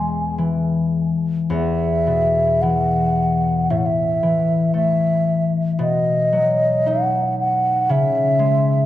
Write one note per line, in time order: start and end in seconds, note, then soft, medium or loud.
0.00 1.09 E2 medium
0.00 1.56 B2 soft
0.00 0.37 E3 soft
0.00 1.56 G#3 soft
0.00 2.37 B3 soft
0.00 0.37 G#5 medium
0.38 1.56 E3 soft
1.50 3.76 E2 medium
1.50 2.63 E5 medium
2.07 3.76 B2 soft
2.62 3.76 E3 soft
2.62 3.72 F#5 medium
3.70 5.85 A2 medium
3.70 3.79 E5 medium
3.77 3.88 F#5 medium
3.86 4.75 E5 medium
4.23 5.85 E3 soft
4.74 8.07 A3 soft
4.74 5.50 E5 medium
5.79 7.95 B2 medium
5.79 6.89 D#5 medium
6.32 7.95 F#3 soft
6.86 8.86 D#4 soft
6.86 7.39 F#5 medium
7.39 7.92 F#5 medium
7.89 8.86 C#3 medium
7.89 8.86 E5 medium
8.39 8.86 G#3 soft